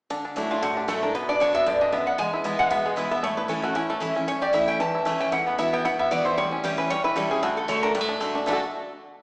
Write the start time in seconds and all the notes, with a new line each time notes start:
0.10 D3 D4
0.25 D4
0.36 F#3 A3 D4 E4
0.51 D4 F4
0.62 A2 D3 F#4
0.77 D4 G4
0.88 F#3 A3 D4 E4 A4
1.03 D4 E4 A#4
1.15 B2 B3 B4
1.29 D4 D5
1.40 F#3 B3 D4 F#4 C#5
1.54 B3 E5
1.66 G2 D3 D5
1.81 D4 D#5
1.92 F#2 B3 E5
2.07 B3 F#5
2.18 E2 G#3 G#5
2.33 E4
2.44 E3 G#3 B3 E4
2.59 G#3 F#5
2.71 B2 B3 E5
2.85 G#3 G#4
2.96 E3 G#3 B3 E4 B4
3.11 B3 E5
3.23 A2 A3 C#5
3.37 E4 B4
3.48 E3 A3 C#4 E4 A4
3.62 A3 C#4 E4 F#4
3.75 E2 C#4 E4
3.90 A3 A4
4.00 E3 A3 C#4 E4
4.15 C#4 E4
4.28 A2 C#4 C#5
4.42 G4 D5
4.53 E3 A3 C#4 E4 E5
4.68 C#4 G5
4.80 E2 E3 A5
4.95 E4
5.05 E3 A3 C#4 E4
5.20 C#4 G5
5.32 E2 E4 F#5
5.47 B3 B4
5.58 E3 B3 E4 F#4 E5
5.73 B3 G5
5.85 B2 E4 F#5
5.99 B3 E5
6.11 E3 B3 E4 F#4 D5
6.25 E4 C5
6.38 A2 G3 C#5
6.51 C#4 E4
6.64 E3 G3 C#4 E4 G4
6.78 C#4 B4
6.90 E2 G3 C#5
7.04 E4 B4
7.16 E3 G3 C#4 E4 A4
7.31 C#4 G#4
7.43 D3 A3 F#4
7.57 A4
7.68 D3 A3 D4 F#4 C#5
7.83 D4 A#4
7.94 A2 G3 B4
8.01 A3
8.09 D4
8.20 D3 A3 D4 F#4
8.35 D4 F#4
8.46 D3 A3 D4 F#4 A4
8.51 F#4 A4